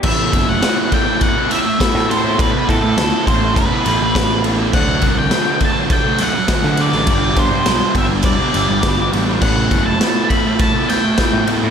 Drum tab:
CC |x---------------|----------------|x---------------|----------------|
RD |--x-x-x-x-x-x-x-|x-x-x-x-x-x-x-x-|--x-x-x-x-x-x-x-|x-x-x-x-x-x-x-x-|
SD |----o-------oo--|----o-------o---|----o-----o-oo-o|----o-----o-o---|
BD |o-o---o-o---o---|o-o---o-o---o---|o-o---o-o---o---|o-o---o-o---o---|

CC |x---------------|
RD |--x-x-x-x-x-x-x-|
SD |----o-----o-o---|
BD |o-o---o-o---o---|